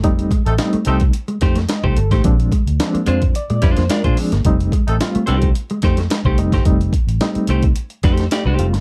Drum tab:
HH |xxxxxxxxxxxxx-xx|xxxxxxxxxxxxxxox|xxxxxxxxxxxxx-xx|xxxxxxxxxxxxx-xx|
SD |----o-----ooo--o|----o-----ooo--o|----o-----ooo--o|----o-----ooo--o|
BD |o-o----o--o--o-o|o-o----o--o--o--|o-o----o--o--o-o|o-o----o--o-----|